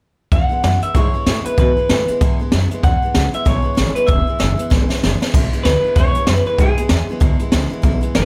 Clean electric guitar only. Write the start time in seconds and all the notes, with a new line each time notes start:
0.33 F#5
0.83 E5
0.96 C#5
1.46 B4
1.59 B4
2.84 F#5
3.35 E5
3.48 C#5
3.95 B4
4.07 E5
5.63 B4
5.96 C#5
6.47 B4
6.60 G#4
8.16 B4